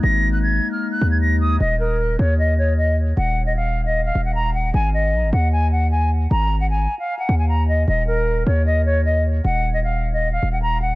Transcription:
<<
  \new Staff \with { instrumentName = "Flute" } { \time 4/4 \key ees \minor \tempo 4 = 153 bes'''8. ges'''16 aes'''8. f'''8 ges'''8 aes'''16 bes'''8 ees'''8 | ees''8 bes'4 des''8 ees''8 des''8 ees''8 r8 | ges''8. ees''16 f''8. ees''8 f''8 ges''16 bes''8 ges''8 | aes''8 ees''4 ges''8 aes''8 ges''8 aes''8 r8 |
bes''8. ges''16 aes''8. f''8 ges''8 aes''16 bes''8 ees''8 | ees''8 bes'4 des''8 ees''8 des''8 ees''8 r8 | ges''8. ees''16 f''8. ees''8 f''8 ges''16 bes''8 ges''8 | }
  \new Staff \with { instrumentName = "Pipe organ" } { \time 4/4 \key ees \minor <aes bes ees'>1 | r1 | r1 | r1 |
r1 | r1 | r1 | }
  \new Staff \with { instrumentName = "808-style bass" } { \clef bass \time 4/4 \key ees \minor aes,,4. r4 ees,4. | ees,,4. ees,2~ ees,8 | ees,,2~ ees,,8 ees,,4. | aes,,4 bes,,16 aes,,16 ees,2~ ees,8 |
aes,,4. r4 ees,4. | ees,,4. ees,2~ ees,8 | ees,,2~ ees,,8 ees,,4. | }
>>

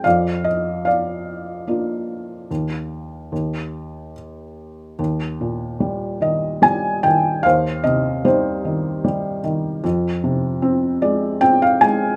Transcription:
<<
  \new Staff \with { instrumentName = "Felt piano" } { \time 3/4 \key ees \mixolydian \tempo 4 = 74 << { f''8 ees''8 f''2~ | f''2 r4 | \key ees \major r4. ees''8 aes''8 g''8 | f''8 ees''8 c''4. r8 |
r4. d''8 g''16 f''16 aes''8 | } \\ { d''4 d''2~ | d''2 r4 | r2. | c''4 ees'4. r8 |
r2. | } >> }
  \new Staff \with { instrumentName = "Felt piano" } { \clef bass \time 3/4 \key ees \mixolydian f,2 <bes d' f'>4 | ees,4 ees,2 | \key ees \major ees,8 bes,8 g8 ees8 g8 ees8 | ees,8 c8 g8 ees8 g8 ees8 |
f,8 c8 c'8 aes8 c'8 aes8 | }
>>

